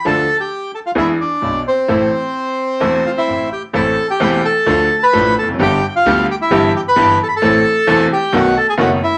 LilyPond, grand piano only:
\new Staff \with { instrumentName = "Grand piano" } { \clef bass \time 4/4 \key a \minor \tempo 4 = 131 <d, d f a d' a'>8 r4. <e, e b d' gis'>8 r8 <b,, b,>8 r8 | <a,, a, e a c' a'>8 r4. <e,, e, e a c' a'>8 r8 <a,, a,>8 r8 | <a,, a, e a c' a'>8 r8 <e,, e, e a c' a'>8 r8 <d, d f a d' a'>8 r8 <a,, a, f a d' a'>8 r32 e,32 f,32 fis,32 | <g,, g, d g b g'>8 r8 <d, d g b g'>8 r8 <g,, g, e g b g'>8 r8 <g,, g, e g b g'>8 r8 |
<a,, a, e a c' a'>8 r8 <e,, e, e a c' a'>8 r8 <b,, b, dis a b fis'>8 r8 <fis,, fis, dis a b fis'>8 r8 | }